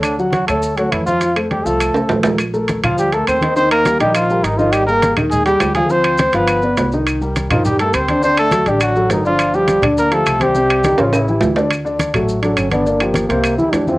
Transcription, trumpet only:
0.02 D4
0.32 F#4
0.47 A4
0.77 F#4
0.92 E4
1.06 F4
1.51 G4
1.66 A4
2.84 F4
2.99 G4
3.13 A4
3.28 C5
3.56 C5
3.71 A#4
4.00 G4
4.15 F4
4.44 D#4
4.58 F4
4.72 G4
4.87 A#4
5.31 G#4
5.46 G4
5.75 G#4
5.91 C5
6.35 B4
7.50 F4
7.65 G4
7.80 A4
7.94 C5
8.24 C5
8.39 A4
8.68 G4
8.82 F#4
9.13 D#4
9.26 F4
9.55 G4
9.99 A#4
10.14 A4
10.43 G4
11.00 F4
11.14 E4

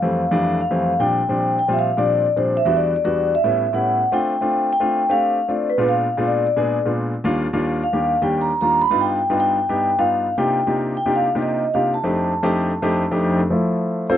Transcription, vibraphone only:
Already playing: F5
0.61 F5
1.00 G5
1.59 G5
1.73 E5
1.79 F5
1.98 D5
2.37 C5
2.57 E5
2.77 D5
2.96 D5
3.35 E5
3.75 F#5
4.14 G5
4.73 G5
5.11 F5
5.50 D5
5.70 B4
5.89 F5
6.27 D5
6.47 D5
7.84 F5
8.22 G5
8.41 A#5
8.61 A#5
8.82 B5
9.01 G5
9.40 G5
9.99 F5
10.38 G5
10.97 G5
11.16 F5
11.42 D#5
11.74 F5
11.94 A5

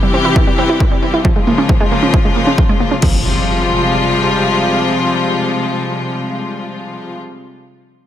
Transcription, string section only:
Already playing: C3 E3 G3 E4 G4
1.25 C#3 F3 G#3 A#3 F4
3.03 C3 F3 G3 G#3 F4

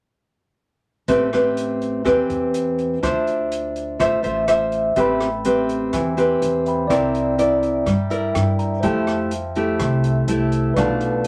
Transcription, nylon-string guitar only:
1.08 A3 C4 G4 B4
1.33 C4 G4 B4
2.04 E3 C4 G4 B4
3.03 D4 F4 C5 E5
3.99 A3 F4 C5 E5
4.23 F4 C5 E5
4.47 F4 C5 E5
4.96 A3 C4 G4 B4
5.45 C4 G4 B4
5.93 E3
6.17 C4 G4 B4
6.90 C4 E4 A#4 D5
7.38 E4 A#4 D5
7.86 G3
8.10 E4 A#4 D5
8.83 F3 A3 E4 G4
9.56 A3 E4 G4
9.80 C3
10.28 A3 E4 G4
10.77 B2 A3 D4 F4

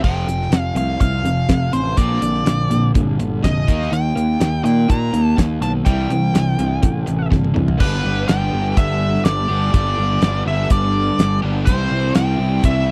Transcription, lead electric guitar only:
0.04 G5
0.60 F5
0.77 F5
1.01 F5
1.73 C5
1.98 D5
3.44 D#5
3.93 G5
4.65 G5
4.90 A#5
5.62 A5
5.85 G5
7.80 B4
8.28 G5
8.77 E5
9.25 D5
9.75 D5
10.48 E5
10.72 D5
11.66 C5
12.15 G5
12.65 E5

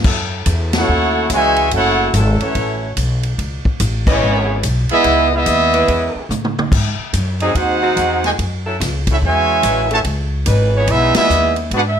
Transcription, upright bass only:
0.04 F#2
0.46 E2
0.88 D#2
1.30 C#2
1.72 F#1
2.13 G#1
2.41 muted upright bass stroke
2.55 A1
2.97 B1
3.38 C#2
3.65 muted upright bass stroke
3.80 A1
4.22 G#1
4.63 B1
4.90 muted upright bass stroke
5.04 C#2
5.46 D#2
5.88 E2
6.15 muted upright bass stroke
6.29 A2
6.72 G#2
6.98 muted upright bass stroke
7.13 F#2
7.55 D#2
7.96 E2
8.39 F#2
8.80 C#2
9.22 E2
9.63 A1
10.05 C#2
10.46 G#1
10.87 B1
11.15 muted upright bass stroke
11.29 D#2
11.71 G#2

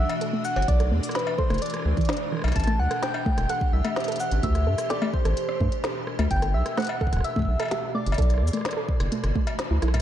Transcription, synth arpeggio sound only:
0.21 A4
0.33 A3
0.80 A4
0.92 A3
1.38 A4
1.50 A3
1.97 E3
2.09 D4
2.32 E3
2.67 A3
2.91 A4
3.26 A3
3.50 A4
3.85 A3
4.08 A4
4.43 A3
4.67 A4
5.02 A3
5.25 A4
5.60 A3
5.84 A4
6.19 A3
6.42 A4
6.77 A3
7.01 A4
7.36 A3
7.60 A4
7.95 A3
8.18 A4
8.53 A3
8.77 A4
9.12 A3
9.36 A3
9.71 E4
9.82 E4
9.94 A2

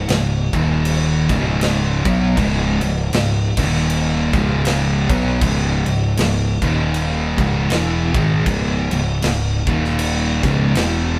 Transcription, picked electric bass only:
0.10 C#1
0.53 D#1
1.30 C#1
2.06 B1
2.37 C#1
2.82 C#1
3.13 C#1
3.58 D#1
4.33 C#1
5.09 B1
5.41 C#1
5.86 C#1
6.18 C#1
6.62 D#1
7.38 C#1
7.70 E1
8.15 G#1
8.46 C#1
8.91 C#1
9.23 C#1
9.67 D#1
10.43 C#1
10.76 E1

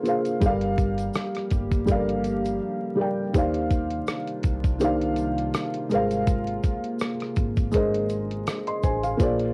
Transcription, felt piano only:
Already playing: A#3 F4 G#4 C5 F5
0.03 A#3 F4 G#4
0.07 C5 F5
0.40 G3 G4 A4
0.45 D5 F5
0.49 A#4
1.86 G3 G4 A4
1.90 D5 F5
1.95 A#4
2.95 G3 G4 A#4
2.99 D5 G5
3.33 D#3 A#3 G4 C5
3.37 D5 F5
4.79 D#3 A#3 G4 C5
4.83 D5 F5
5.89 G#3 G#4 A#4 C5
5.95 F5
7.71 G#3 G#4 A#4
7.76 C5 D#5
8.67 D#5 C6
8.84 C5 G#5
9.03 G#4 F5
9.17 A#3 F4 G#4 C5
9.23 D5

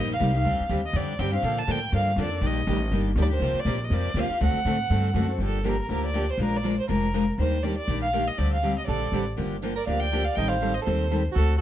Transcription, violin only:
0.13 F5
0.37 F5
0.86 D#5
0.96 D5
1.19 G5
1.33 F5
1.59 A5
1.71 G5
1.96 F5
2.21 D5
2.46 D#5
3.22 D5
3.34 C5
3.60 D5
3.78 D5
3.84 D#5
3.94 D5
4.19 F5
4.43 F#5
5.45 A4
5.69 A#4
5.82 A#4
5.91 A#4
6.06 D5
6.32 C5
6.44 A#4
6.57 D5
6.80 C5
6.90 A#4
7.40 C5
7.63 D5
7.78 D5
8.02 F5
8.28 D#5
8.38 D5
8.54 F5
8.78 D#5
8.87 D5
9.77 D5
9.87 F5
10.00 G5
10.25 F5
10.36 G5
10.48 F5
10.75 D#5
10.84 C5
11.36 A4

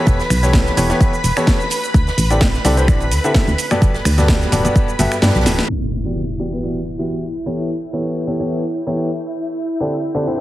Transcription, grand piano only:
Already playing: E3 B3 E4 G4 A4 C#5
0.43 E3 B3 E4 G4 A4 C#5
0.77 E3 B3 E4 G4 A4 C#5
0.90 E3 B3 E4 G4 A4 C#5
1.37 E3 B3 E4 G4 A4 C#5
2.30 D3 C4 E4 G4 A4 D5
2.65 D3 C4 E4 G4 A4 D5
2.77 D3 C4 E4 G4 A4 C5
2.88 C4 E4 A4
3.24 D3 C4 E4 G4 A4 E5
3.71 G2 B3 F#4 G4 A4 D5
4.18 G2 B3 F#4 G4 A4 D5
4.52 G2 B3 F#4 G4 A4 D5
4.65 G2 B3 F#4 G4 A4 D5
4.99 G2 B3 F#4 G4 A4 E5
5.22 G2 B3 F#4 G4 A4 D5
5.46 E3 B3 F#4 G4 A4 B4
6.05 E3 B3 E4 F#4 G4 D5
6.40 E3 B3 E4 F#4 G4 D5
6.52 E3 B3 E4 F#4 G4 B4
6.63 E3 B3 E4 F#4 G4 D5
6.99 E3 B3 E4 F#4 G4 E5
7.46 E3 B3 E4 G4 A4 C#5
7.93 E3 B3 E4 G4 A4 C#5
8.27 E3 B3 E4 G4 A4 C#5
8.40 E3 B3 E4 G4 A4 C#5
8.87 E3 B3 E4 G4 A4 C#5
9.80 D3 C4 E4 G4 A4 D5
10.15 D3 C4 E4 G4 A4 D5
10.27 D3 C4 E4 G4 A4 C5

